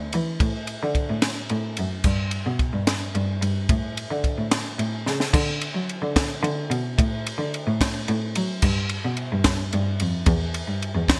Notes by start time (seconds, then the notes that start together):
Already playing: D2
0.13 E3, ride
0.40 A2, kick, ride
0.67 ride
0.83 D3
0.95 kick, ride
1.10 A2
1.22 snare, ride
1.49 A2, ride
1.77 F#2, ride
2.04 G2, kick, crash
2.31 ride
2.46 B2
2.59 kick, ride
2.73 G2
2.87 snare, ride
3.15 G2, ride
3.42 G2, ride
3.69 A2, kick, ride
3.97 ride
4.11 D3
4.24 kick, ride
4.38 A2
4.51 snare, ride
4.78 A2, ride
5.06 C#3, snare
5.20 snare
5.34 D3, kick, crash
5.61 ride
5.74 F#3
5.89 ride
6.02 D3
6.16 kick, snare, ride
6.43 D3, ride
6.70 B2, ride
6.98 A2, kick, ride
7.27 ride
7.38 D3
7.54 ride
7.67 A2
7.81 kick, snare, ride
8.08 A2, ride
8.35 F#3, ride
8.62 G2, kick, crash
8.89 ride
9.05 B2
9.17 ride
9.32 G2
9.44 kick, snare, ride
9.73 G2, ride
10.00 F2, ride
10.26 E2, kick, ride
10.54 ride
10.67 G2
10.82 ride
10.95 E2
11.08 kick, snare, ride